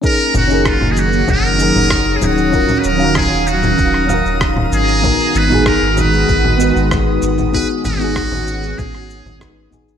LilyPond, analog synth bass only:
\new Staff \with { instrumentName = "Analog synth bass" } { \clef bass \time 4/4 \key fis \major \tempo 4 = 96 r8 fis,,8. fis,,8. fis,,8. fis,,8. dis,,8~ | dis,,16 r16 dis,,8. dis,,8. dis,,8. dis,,8. gis,,8~ | gis,,16 r16 gis,,8. gis,,8. gis,,8. gis,,8. gis,,8~ | gis,,16 r16 gis,,8. gis,,8. gis,,8. gis,,8. gis,,8 | }